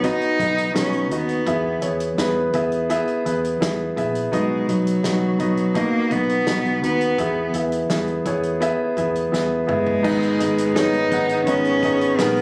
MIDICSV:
0, 0, Header, 1, 6, 480
1, 0, Start_track
1, 0, Tempo, 715137
1, 986, Time_signature, 4, 2, 24, 8
1, 8334, End_track
2, 0, Start_track
2, 0, Title_t, "Grand piano"
2, 0, Program_c, 0, 0
2, 0, Control_c, 0, 64, 127
2, 0, Note_on_c, 0, 47, 48
2, 0, Note_on_c, 0, 59, 61
2, 0, Note_on_c, 0, 63, 60
2, 0, Note_on_c, 0, 66, 59
2, 0, Note_on_c, 0, 73, 65
2, 0, Note_on_c, 0, 75, 69
2, 18, Note_off_c, 0, 59, 0
2, 18, Note_on_c, 0, 59, 73
2, 20, Note_off_c, 0, 63, 0
2, 20, Note_on_c, 0, 63, 64
2, 28, Note_off_c, 0, 66, 0
2, 28, Note_on_c, 0, 66, 68
2, 30, Note_off_c, 0, 75, 0
2, 30, Note_on_c, 0, 75, 80
2, 246, Note_off_c, 0, 59, 0
2, 247, Note_off_c, 0, 63, 0
2, 251, Note_off_c, 0, 66, 0
2, 251, Note_off_c, 0, 75, 0
2, 265, Note_on_c, 0, 59, 59
2, 270, Note_on_c, 0, 63, 56
2, 272, Note_on_c, 0, 66, 50
2, 276, Note_on_c, 0, 75, 66
2, 486, Note_off_c, 0, 59, 0
2, 491, Note_off_c, 0, 63, 0
2, 493, Note_off_c, 0, 66, 0
2, 495, Note_off_c, 0, 75, 0
2, 496, Note_on_c, 0, 59, 66
2, 502, Note_on_c, 0, 63, 59
2, 507, Note_on_c, 0, 66, 58
2, 510, Note_on_c, 0, 75, 72
2, 725, Note_off_c, 0, 59, 0
2, 727, Note_off_c, 0, 63, 0
2, 730, Note_off_c, 0, 66, 0
2, 731, Note_off_c, 0, 75, 0
2, 740, Note_on_c, 0, 59, 60
2, 745, Note_on_c, 0, 63, 60
2, 749, Note_on_c, 0, 66, 56
2, 753, Note_on_c, 0, 75, 73
2, 967, Note_off_c, 0, 59, 0
2, 969, Note_off_c, 0, 63, 0
2, 971, Note_off_c, 0, 66, 0
2, 973, Note_off_c, 0, 75, 0
2, 978, Note_on_c, 0, 59, 71
2, 984, Note_on_c, 0, 64, 69
2, 985, Note_on_c, 0, 52, 51
2, 987, Note_on_c, 0, 68, 65
2, 990, Note_on_c, 0, 76, 84
2, 996, Control_c, 0, 64, 0
2, 1000, Note_off_c, 0, 47, 0
2, 1000, Note_off_c, 0, 73, 0
2, 1104, Control_c, 0, 64, 127
2, 1205, Note_off_c, 0, 59, 0
2, 1208, Note_off_c, 0, 64, 0
2, 1210, Note_off_c, 0, 68, 0
2, 1212, Note_off_c, 0, 76, 0
2, 1216, Note_on_c, 0, 59, 60
2, 1218, Note_on_c, 0, 64, 52
2, 1223, Note_on_c, 0, 68, 53
2, 1224, Note_on_c, 0, 73, 67
2, 1444, Note_off_c, 0, 59, 0
2, 1445, Note_off_c, 0, 64, 0
2, 1448, Note_off_c, 0, 68, 0
2, 1449, Note_off_c, 0, 73, 0
2, 1461, Note_on_c, 0, 59, 70
2, 1465, Note_on_c, 0, 64, 68
2, 1469, Note_on_c, 0, 68, 66
2, 1472, Note_on_c, 0, 71, 85
2, 1678, Note_off_c, 0, 52, 0
2, 1687, Note_off_c, 0, 59, 0
2, 1689, Note_off_c, 0, 64, 0
2, 1691, Note_off_c, 0, 68, 0
2, 1692, Note_off_c, 0, 71, 0
2, 1701, Note_on_c, 0, 59, 82
2, 1706, Note_on_c, 0, 64, 70
2, 1707, Note_on_c, 0, 68, 73
2, 1712, Note_on_c, 0, 76, 88
2, 1927, Note_off_c, 0, 59, 0
2, 1929, Note_off_c, 0, 64, 0
2, 1930, Note_off_c, 0, 68, 0
2, 1932, Note_off_c, 0, 76, 0
2, 1943, Note_on_c, 0, 59, 94
2, 1945, Note_on_c, 0, 64, 84
2, 1946, Note_on_c, 0, 68, 84
2, 1953, Note_on_c, 0, 76, 106
2, 2168, Note_off_c, 0, 59, 0
2, 2169, Note_off_c, 0, 64, 0
2, 2169, Note_off_c, 0, 68, 0
2, 2173, Note_off_c, 0, 76, 0
2, 2180, Note_on_c, 0, 59, 69
2, 2183, Note_on_c, 0, 64, 68
2, 2185, Note_on_c, 0, 68, 60
2, 2188, Note_on_c, 0, 71, 77
2, 2406, Note_off_c, 0, 59, 0
2, 2408, Note_off_c, 0, 64, 0
2, 2409, Note_off_c, 0, 68, 0
2, 2410, Note_off_c, 0, 71, 0
2, 2419, Note_on_c, 0, 59, 77
2, 2422, Note_on_c, 0, 64, 68
2, 2429, Note_on_c, 0, 68, 71
2, 2430, Note_on_c, 0, 76, 81
2, 2645, Note_off_c, 0, 59, 0
2, 2647, Note_off_c, 0, 64, 0
2, 2650, Note_off_c, 0, 68, 0
2, 2651, Note_off_c, 0, 76, 0
2, 2660, Note_on_c, 0, 59, 78
2, 2664, Note_on_c, 0, 64, 66
2, 2666, Note_on_c, 0, 68, 65
2, 2671, Note_on_c, 0, 76, 87
2, 2886, Note_off_c, 0, 59, 0
2, 2888, Note_off_c, 0, 64, 0
2, 2889, Note_off_c, 0, 68, 0
2, 2891, Note_off_c, 0, 76, 0
2, 2898, Note_on_c, 0, 59, 76
2, 2900, Note_on_c, 0, 63, 72
2, 2904, Note_on_c, 0, 66, 76
2, 2905, Note_on_c, 0, 47, 55
2, 2910, Note_on_c, 0, 75, 86
2, 2914, Control_c, 0, 64, 0
2, 3049, Control_c, 0, 64, 127
2, 3125, Note_off_c, 0, 59, 0
2, 3126, Note_off_c, 0, 63, 0
2, 3128, Note_off_c, 0, 66, 0
2, 3131, Note_off_c, 0, 75, 0
2, 3137, Note_on_c, 0, 59, 61
2, 3142, Note_on_c, 0, 63, 52
2, 3144, Note_on_c, 0, 66, 52
2, 3150, Note_on_c, 0, 75, 61
2, 3364, Note_off_c, 0, 59, 0
2, 3367, Note_off_c, 0, 63, 0
2, 3368, Note_off_c, 0, 66, 0
2, 3371, Note_off_c, 0, 75, 0
2, 3377, Note_on_c, 0, 59, 60
2, 3382, Note_on_c, 0, 63, 56
2, 3385, Note_on_c, 0, 66, 56
2, 3389, Note_on_c, 0, 75, 67
2, 3598, Note_off_c, 0, 47, 0
2, 3604, Note_off_c, 0, 59, 0
2, 3607, Note_off_c, 0, 63, 0
2, 3609, Note_off_c, 0, 66, 0
2, 3610, Note_off_c, 0, 75, 0
2, 3614, Note_on_c, 0, 59, 61
2, 3617, Note_on_c, 0, 63, 64
2, 3621, Note_on_c, 0, 66, 61
2, 3624, Note_on_c, 0, 75, 70
2, 3843, Note_off_c, 0, 59, 0
2, 3844, Note_off_c, 0, 63, 0
2, 3846, Note_off_c, 0, 66, 0
2, 3848, Note_off_c, 0, 75, 0
2, 3855, Note_on_c, 0, 47, 78
2, 3858, Note_on_c, 0, 63, 75
2, 3862, Note_on_c, 0, 66, 68
2, 3868, Note_on_c, 0, 75, 83
2, 4083, Note_off_c, 0, 47, 0
2, 4085, Note_off_c, 0, 63, 0
2, 4087, Note_off_c, 0, 66, 0
2, 4090, Note_off_c, 0, 75, 0
2, 4093, Note_on_c, 0, 59, 61
2, 4096, Note_on_c, 0, 63, 51
2, 4101, Note_on_c, 0, 66, 54
2, 4104, Note_on_c, 0, 75, 65
2, 4322, Note_off_c, 0, 59, 0
2, 4324, Note_off_c, 0, 63, 0
2, 4326, Note_off_c, 0, 66, 0
2, 4328, Note_off_c, 0, 75, 0
2, 4339, Note_on_c, 0, 59, 63
2, 4341, Note_on_c, 0, 63, 55
2, 4346, Note_on_c, 0, 66, 60
2, 4349, Note_on_c, 0, 75, 69
2, 4565, Note_off_c, 0, 59, 0
2, 4566, Note_off_c, 0, 63, 0
2, 4568, Note_off_c, 0, 66, 0
2, 4570, Note_off_c, 0, 75, 0
2, 4576, Note_on_c, 0, 59, 60
2, 4582, Note_on_c, 0, 63, 59
2, 4583, Note_on_c, 0, 66, 57
2, 4589, Note_on_c, 0, 71, 70
2, 4804, Note_off_c, 0, 59, 0
2, 4806, Note_off_c, 0, 63, 0
2, 4807, Note_off_c, 0, 66, 0
2, 4810, Note_off_c, 0, 71, 0
2, 4819, Note_on_c, 0, 59, 73
2, 4822, Note_on_c, 0, 64, 70
2, 4824, Note_on_c, 0, 52, 54
2, 4825, Note_on_c, 0, 68, 68
2, 4830, Note_on_c, 0, 76, 83
2, 4832, Control_c, 0, 64, 0
2, 4954, Control_c, 0, 64, 127
2, 5045, Note_off_c, 0, 59, 0
2, 5047, Note_off_c, 0, 64, 0
2, 5048, Note_off_c, 0, 68, 0
2, 5051, Note_off_c, 0, 76, 0
2, 5059, Note_on_c, 0, 59, 59
2, 5063, Note_on_c, 0, 64, 51
2, 5067, Note_on_c, 0, 68, 54
2, 5069, Note_on_c, 0, 76, 65
2, 5285, Note_off_c, 0, 59, 0
2, 5287, Note_off_c, 0, 64, 0
2, 5289, Note_off_c, 0, 68, 0
2, 5290, Note_off_c, 0, 76, 0
2, 5300, Note_on_c, 0, 59, 70
2, 5306, Note_on_c, 0, 64, 68
2, 5307, Note_on_c, 0, 68, 67
2, 5310, Note_on_c, 0, 76, 79
2, 5517, Note_off_c, 0, 52, 0
2, 5525, Note_off_c, 0, 59, 0
2, 5528, Note_off_c, 0, 64, 0
2, 5529, Note_off_c, 0, 68, 0
2, 5531, Note_off_c, 0, 76, 0
2, 5541, Note_on_c, 0, 59, 76
2, 5541, Note_on_c, 0, 64, 72
2, 5548, Note_on_c, 0, 68, 70
2, 5550, Note_on_c, 0, 73, 79
2, 5765, Note_off_c, 0, 59, 0
2, 5766, Note_off_c, 0, 64, 0
2, 5769, Note_off_c, 0, 68, 0
2, 5770, Note_off_c, 0, 73, 0
2, 5775, Note_on_c, 0, 59, 87
2, 5781, Note_on_c, 0, 64, 76
2, 5784, Note_on_c, 0, 68, 80
2, 5787, Note_on_c, 0, 76, 96
2, 6003, Note_off_c, 0, 59, 0
2, 6006, Note_off_c, 0, 64, 0
2, 6007, Note_off_c, 0, 68, 0
2, 6009, Note_off_c, 0, 76, 0
2, 6018, Note_on_c, 0, 59, 71
2, 6022, Note_on_c, 0, 64, 62
2, 6025, Note_on_c, 0, 68, 65
2, 6028, Note_on_c, 0, 76, 77
2, 6244, Note_off_c, 0, 59, 0
2, 6246, Note_off_c, 0, 64, 0
2, 6248, Note_off_c, 0, 68, 0
2, 6249, Note_off_c, 0, 76, 0
2, 6255, Note_on_c, 0, 59, 74
2, 6256, Note_on_c, 0, 64, 68
2, 6262, Note_on_c, 0, 68, 67
2, 6267, Note_on_c, 0, 76, 80
2, 6479, Note_off_c, 0, 59, 0
2, 6483, Note_off_c, 0, 64, 0
2, 6486, Note_off_c, 0, 68, 0
2, 6489, Note_off_c, 0, 76, 0
2, 6489, Note_on_c, 0, 59, 74
2, 6496, Note_on_c, 0, 64, 69
2, 6496, Note_on_c, 0, 68, 66
2, 6500, Note_on_c, 0, 76, 82
2, 6719, Note_off_c, 0, 59, 0
2, 6723, Note_off_c, 0, 64, 0
2, 6723, Note_off_c, 0, 68, 0
2, 6725, Note_off_c, 0, 76, 0
2, 6730, Note_on_c, 0, 59, 82
2, 6732, Note_on_c, 0, 63, 79
2, 6735, Note_on_c, 0, 44, 58
2, 6738, Note_on_c, 0, 68, 72
2, 6741, Note_on_c, 0, 75, 87
2, 6751, Control_c, 0, 64, 0
2, 6852, Control_c, 0, 64, 127
2, 6960, Note_off_c, 0, 59, 0
2, 6961, Note_off_c, 0, 63, 0
2, 6964, Note_off_c, 0, 68, 0
2, 6965, Note_off_c, 0, 75, 0
2, 6971, Note_on_c, 0, 59, 65
2, 6974, Note_on_c, 0, 63, 59
2, 6977, Note_on_c, 0, 68, 61
2, 6980, Note_on_c, 0, 75, 71
2, 7200, Note_off_c, 0, 59, 0
2, 7202, Note_off_c, 0, 63, 0
2, 7203, Note_off_c, 0, 68, 0
2, 7205, Note_off_c, 0, 75, 0
2, 7210, Note_on_c, 0, 59, 69
2, 7217, Note_on_c, 0, 63, 63
2, 7219, Note_on_c, 0, 68, 67
2, 7225, Note_on_c, 0, 73, 82
2, 7431, Note_off_c, 0, 44, 0
2, 7439, Note_off_c, 0, 59, 0
2, 7443, Note_off_c, 0, 63, 0
2, 7444, Note_off_c, 0, 68, 0
2, 7447, Note_off_c, 0, 73, 0
2, 7460, Note_on_c, 0, 59, 73
2, 7463, Note_on_c, 0, 63, 68
2, 7467, Note_on_c, 0, 68, 68
2, 7470, Note_on_c, 0, 78, 78
2, 7684, Note_off_c, 0, 59, 0
2, 7686, Note_off_c, 0, 63, 0
2, 7688, Note_off_c, 0, 68, 0
2, 7690, Note_off_c, 0, 78, 0
2, 7696, Note_on_c, 0, 59, 75
2, 7699, Note_on_c, 0, 63, 62
2, 7704, Note_on_c, 0, 68, 65
2, 7707, Note_on_c, 0, 75, 77
2, 7922, Note_off_c, 0, 59, 0
2, 7924, Note_off_c, 0, 63, 0
2, 7926, Note_off_c, 0, 68, 0
2, 7927, Note_off_c, 0, 75, 0
2, 7940, Note_on_c, 0, 59, 79
2, 7945, Note_on_c, 0, 63, 79
2, 7948, Note_on_c, 0, 68, 84
2, 7953, Note_on_c, 0, 75, 96
2, 8164, Note_off_c, 0, 59, 0
2, 8166, Note_off_c, 0, 63, 0
2, 8168, Note_off_c, 0, 68, 0
2, 8170, Note_off_c, 0, 75, 0
2, 8184, Note_on_c, 0, 59, 87
2, 8187, Note_on_c, 0, 63, 89
2, 8191, Note_on_c, 0, 68, 83
2, 8197, Note_on_c, 0, 70, 106
2, 8334, Note_off_c, 0, 59, 0
2, 8334, Note_off_c, 0, 63, 0
2, 8334, Note_off_c, 0, 68, 0
2, 8334, Note_off_c, 0, 70, 0
2, 8334, End_track
3, 0, Start_track
3, 0, Title_t, "Cello"
3, 0, Program_c, 1, 42
3, 35, Note_on_c, 1, 63, 93
3, 511, Note_off_c, 1, 63, 0
3, 514, Note_on_c, 1, 61, 79
3, 702, Note_off_c, 1, 61, 0
3, 702, Note_on_c, 1, 61, 49
3, 752, Note_on_c, 1, 59, 77
3, 762, Note_off_c, 1, 61, 0
3, 1229, Note_off_c, 1, 59, 0
3, 2912, Note_on_c, 1, 56, 78
3, 3148, Note_on_c, 1, 54, 78
3, 3158, Note_off_c, 1, 56, 0
3, 3866, Note_on_c, 1, 58, 90
3, 3877, Note_off_c, 1, 54, 0
3, 4112, Note_on_c, 1, 59, 87
3, 4122, Note_off_c, 1, 58, 0
3, 4586, Note_off_c, 1, 59, 0
3, 4590, Note_on_c, 1, 59, 92
3, 5040, Note_off_c, 1, 59, 0
3, 6501, Note_on_c, 1, 56, 80
3, 7217, Note_on_c, 1, 63, 90
3, 7227, Note_off_c, 1, 56, 0
3, 7689, Note_off_c, 1, 63, 0
3, 7693, Note_on_c, 1, 61, 95
3, 8171, Note_on_c, 1, 59, 89
3, 8181, Note_off_c, 1, 61, 0
3, 8334, Note_off_c, 1, 59, 0
3, 8334, End_track
4, 0, Start_track
4, 0, Title_t, "String section"
4, 0, Program_c, 2, 48
4, 6734, Note_on_c, 2, 59, 74
4, 6737, Note_on_c, 2, 51, 73
4, 6737, Note_on_c, 2, 56, 66
4, 8334, Note_off_c, 2, 51, 0
4, 8334, Note_off_c, 2, 56, 0
4, 8334, Note_off_c, 2, 59, 0
4, 8334, End_track
5, 0, Start_track
5, 0, Title_t, "Fingered electric bass"
5, 0, Program_c, 3, 33
5, 0, Note_on_c, 3, 35, 84
5, 81, Note_off_c, 3, 35, 0
5, 266, Note_on_c, 3, 35, 89
5, 463, Note_off_c, 3, 35, 0
5, 504, Note_on_c, 3, 35, 84
5, 743, Note_off_c, 3, 35, 0
5, 743, Note_on_c, 3, 39, 69
5, 941, Note_off_c, 3, 39, 0
5, 983, Note_on_c, 3, 40, 82
5, 1181, Note_off_c, 3, 40, 0
5, 1224, Note_on_c, 3, 40, 85
5, 1422, Note_off_c, 3, 40, 0
5, 1463, Note_on_c, 3, 40, 83
5, 1661, Note_off_c, 3, 40, 0
5, 1706, Note_on_c, 3, 40, 83
5, 2001, Note_off_c, 3, 40, 0
5, 2187, Note_on_c, 3, 40, 76
5, 2383, Note_off_c, 3, 40, 0
5, 2426, Note_on_c, 3, 40, 91
5, 2622, Note_off_c, 3, 40, 0
5, 2666, Note_on_c, 3, 34, 74
5, 2862, Note_off_c, 3, 34, 0
5, 2907, Note_on_c, 3, 35, 78
5, 3103, Note_off_c, 3, 35, 0
5, 3143, Note_on_c, 3, 35, 80
5, 3341, Note_off_c, 3, 35, 0
5, 3384, Note_on_c, 3, 35, 89
5, 3581, Note_off_c, 3, 35, 0
5, 3624, Note_on_c, 3, 35, 82
5, 3919, Note_off_c, 3, 35, 0
5, 4100, Note_on_c, 3, 35, 86
5, 4299, Note_off_c, 3, 35, 0
5, 4341, Note_on_c, 3, 35, 83
5, 4584, Note_off_c, 3, 35, 0
5, 4584, Note_on_c, 3, 39, 72
5, 4781, Note_off_c, 3, 39, 0
5, 4820, Note_on_c, 3, 40, 80
5, 5018, Note_off_c, 3, 40, 0
5, 5058, Note_on_c, 3, 40, 78
5, 5257, Note_off_c, 3, 40, 0
5, 5301, Note_on_c, 3, 40, 88
5, 5499, Note_off_c, 3, 40, 0
5, 5542, Note_on_c, 3, 40, 84
5, 5838, Note_off_c, 3, 40, 0
5, 6019, Note_on_c, 3, 40, 81
5, 6218, Note_off_c, 3, 40, 0
5, 6263, Note_on_c, 3, 40, 89
5, 6459, Note_off_c, 3, 40, 0
5, 6502, Note_on_c, 3, 31, 64
5, 6699, Note_off_c, 3, 31, 0
5, 6740, Note_on_c, 3, 32, 83
5, 6938, Note_off_c, 3, 32, 0
5, 6984, Note_on_c, 3, 32, 82
5, 7180, Note_off_c, 3, 32, 0
5, 7225, Note_on_c, 3, 32, 96
5, 7420, Note_off_c, 3, 32, 0
5, 7461, Note_on_c, 3, 32, 91
5, 7658, Note_off_c, 3, 32, 0
5, 7699, Note_on_c, 3, 32, 86
5, 7897, Note_off_c, 3, 32, 0
5, 7940, Note_on_c, 3, 32, 88
5, 8137, Note_off_c, 3, 32, 0
5, 8179, Note_on_c, 3, 34, 96
5, 8334, Note_off_c, 3, 34, 0
5, 8334, End_track
6, 0, Start_track
6, 0, Title_t, "Drums"
6, 24, Note_on_c, 9, 42, 74
6, 26, Note_on_c, 9, 36, 76
6, 91, Note_off_c, 9, 42, 0
6, 93, Note_off_c, 9, 36, 0
6, 144, Note_on_c, 9, 42, 31
6, 211, Note_off_c, 9, 42, 0
6, 265, Note_on_c, 9, 36, 86
6, 268, Note_on_c, 9, 42, 65
6, 332, Note_off_c, 9, 36, 0
6, 335, Note_off_c, 9, 42, 0
6, 390, Note_on_c, 9, 42, 42
6, 457, Note_off_c, 9, 42, 0
6, 508, Note_on_c, 9, 38, 96
6, 509, Note_on_c, 9, 42, 81
6, 575, Note_off_c, 9, 38, 0
6, 576, Note_off_c, 9, 42, 0
6, 623, Note_on_c, 9, 42, 29
6, 690, Note_off_c, 9, 42, 0
6, 746, Note_on_c, 9, 42, 65
6, 813, Note_off_c, 9, 42, 0
6, 863, Note_on_c, 9, 42, 39
6, 930, Note_off_c, 9, 42, 0
6, 982, Note_on_c, 9, 42, 79
6, 984, Note_on_c, 9, 36, 87
6, 1049, Note_off_c, 9, 42, 0
6, 1051, Note_off_c, 9, 36, 0
6, 1220, Note_on_c, 9, 42, 75
6, 1287, Note_off_c, 9, 42, 0
6, 1343, Note_on_c, 9, 42, 55
6, 1410, Note_off_c, 9, 42, 0
6, 1466, Note_on_c, 9, 38, 87
6, 1468, Note_on_c, 9, 42, 67
6, 1533, Note_off_c, 9, 38, 0
6, 1535, Note_off_c, 9, 42, 0
6, 1701, Note_on_c, 9, 42, 73
6, 1704, Note_on_c, 9, 36, 80
6, 1768, Note_off_c, 9, 42, 0
6, 1772, Note_off_c, 9, 36, 0
6, 1824, Note_on_c, 9, 42, 39
6, 1891, Note_off_c, 9, 42, 0
6, 1945, Note_on_c, 9, 42, 72
6, 2012, Note_off_c, 9, 42, 0
6, 2064, Note_on_c, 9, 42, 29
6, 2131, Note_off_c, 9, 42, 0
6, 2188, Note_on_c, 9, 42, 65
6, 2255, Note_off_c, 9, 42, 0
6, 2312, Note_on_c, 9, 42, 42
6, 2379, Note_off_c, 9, 42, 0
6, 2430, Note_on_c, 9, 38, 93
6, 2432, Note_on_c, 9, 42, 84
6, 2497, Note_off_c, 9, 38, 0
6, 2499, Note_off_c, 9, 42, 0
6, 2667, Note_on_c, 9, 36, 82
6, 2668, Note_on_c, 9, 42, 64
6, 2734, Note_off_c, 9, 36, 0
6, 2735, Note_off_c, 9, 42, 0
6, 2785, Note_on_c, 9, 42, 42
6, 2853, Note_off_c, 9, 42, 0
6, 2906, Note_on_c, 9, 36, 89
6, 2906, Note_on_c, 9, 42, 74
6, 2973, Note_off_c, 9, 36, 0
6, 2973, Note_off_c, 9, 42, 0
6, 3146, Note_on_c, 9, 42, 74
6, 3213, Note_off_c, 9, 42, 0
6, 3267, Note_on_c, 9, 42, 55
6, 3334, Note_off_c, 9, 42, 0
6, 3385, Note_on_c, 9, 38, 97
6, 3387, Note_on_c, 9, 42, 70
6, 3452, Note_off_c, 9, 38, 0
6, 3454, Note_off_c, 9, 42, 0
6, 3621, Note_on_c, 9, 42, 66
6, 3624, Note_on_c, 9, 36, 76
6, 3688, Note_off_c, 9, 42, 0
6, 3691, Note_off_c, 9, 36, 0
6, 3740, Note_on_c, 9, 42, 39
6, 3807, Note_off_c, 9, 42, 0
6, 3860, Note_on_c, 9, 42, 73
6, 3863, Note_on_c, 9, 36, 77
6, 3927, Note_off_c, 9, 42, 0
6, 3930, Note_off_c, 9, 36, 0
6, 4100, Note_on_c, 9, 42, 64
6, 4101, Note_on_c, 9, 36, 84
6, 4167, Note_off_c, 9, 42, 0
6, 4168, Note_off_c, 9, 36, 0
6, 4224, Note_on_c, 9, 42, 44
6, 4291, Note_off_c, 9, 42, 0
6, 4342, Note_on_c, 9, 38, 98
6, 4344, Note_on_c, 9, 42, 85
6, 4409, Note_off_c, 9, 38, 0
6, 4411, Note_off_c, 9, 42, 0
6, 4463, Note_on_c, 9, 42, 29
6, 4530, Note_off_c, 9, 42, 0
6, 4586, Note_on_c, 9, 42, 61
6, 4654, Note_off_c, 9, 42, 0
6, 4703, Note_on_c, 9, 42, 45
6, 4770, Note_off_c, 9, 42, 0
6, 4820, Note_on_c, 9, 42, 75
6, 4821, Note_on_c, 9, 36, 86
6, 4887, Note_off_c, 9, 42, 0
6, 4889, Note_off_c, 9, 36, 0
6, 5058, Note_on_c, 9, 42, 71
6, 5125, Note_off_c, 9, 42, 0
6, 5181, Note_on_c, 9, 42, 55
6, 5248, Note_off_c, 9, 42, 0
6, 5301, Note_on_c, 9, 38, 88
6, 5303, Note_on_c, 9, 42, 67
6, 5368, Note_off_c, 9, 38, 0
6, 5370, Note_off_c, 9, 42, 0
6, 5420, Note_on_c, 9, 42, 27
6, 5488, Note_off_c, 9, 42, 0
6, 5541, Note_on_c, 9, 42, 69
6, 5542, Note_on_c, 9, 36, 76
6, 5608, Note_off_c, 9, 42, 0
6, 5609, Note_off_c, 9, 36, 0
6, 5660, Note_on_c, 9, 42, 41
6, 5727, Note_off_c, 9, 42, 0
6, 5782, Note_on_c, 9, 42, 70
6, 5849, Note_off_c, 9, 42, 0
6, 6021, Note_on_c, 9, 36, 86
6, 6023, Note_on_c, 9, 42, 64
6, 6088, Note_off_c, 9, 36, 0
6, 6091, Note_off_c, 9, 42, 0
6, 6144, Note_on_c, 9, 42, 41
6, 6211, Note_off_c, 9, 42, 0
6, 6266, Note_on_c, 9, 38, 48
6, 6333, Note_off_c, 9, 38, 0
6, 6502, Note_on_c, 9, 45, 80
6, 6569, Note_off_c, 9, 45, 0
6, 6622, Note_on_c, 9, 43, 66
6, 6689, Note_off_c, 9, 43, 0
6, 6742, Note_on_c, 9, 36, 107
6, 6742, Note_on_c, 9, 49, 99
6, 6809, Note_off_c, 9, 36, 0
6, 6809, Note_off_c, 9, 49, 0
6, 6864, Note_on_c, 9, 42, 35
6, 6931, Note_off_c, 9, 42, 0
6, 6982, Note_on_c, 9, 42, 89
6, 7049, Note_off_c, 9, 42, 0
6, 7102, Note_on_c, 9, 42, 64
6, 7170, Note_off_c, 9, 42, 0
6, 7223, Note_on_c, 9, 38, 110
6, 7225, Note_on_c, 9, 42, 73
6, 7290, Note_off_c, 9, 38, 0
6, 7292, Note_off_c, 9, 42, 0
6, 7338, Note_on_c, 9, 42, 32
6, 7405, Note_off_c, 9, 42, 0
6, 7460, Note_on_c, 9, 42, 78
6, 7461, Note_on_c, 9, 36, 92
6, 7527, Note_off_c, 9, 42, 0
6, 7528, Note_off_c, 9, 36, 0
6, 7579, Note_on_c, 9, 42, 46
6, 7646, Note_off_c, 9, 42, 0
6, 7696, Note_on_c, 9, 42, 86
6, 7700, Note_on_c, 9, 36, 91
6, 7763, Note_off_c, 9, 42, 0
6, 7767, Note_off_c, 9, 36, 0
6, 7817, Note_on_c, 9, 42, 34
6, 7884, Note_off_c, 9, 42, 0
6, 7939, Note_on_c, 9, 36, 99
6, 7940, Note_on_c, 9, 42, 74
6, 8006, Note_off_c, 9, 36, 0
6, 8007, Note_off_c, 9, 42, 0
6, 8062, Note_on_c, 9, 42, 47
6, 8129, Note_off_c, 9, 42, 0
6, 8180, Note_on_c, 9, 38, 113
6, 8182, Note_on_c, 9, 42, 97
6, 8247, Note_off_c, 9, 38, 0
6, 8249, Note_off_c, 9, 42, 0
6, 8299, Note_on_c, 9, 42, 36
6, 8334, Note_off_c, 9, 42, 0
6, 8334, End_track
0, 0, End_of_file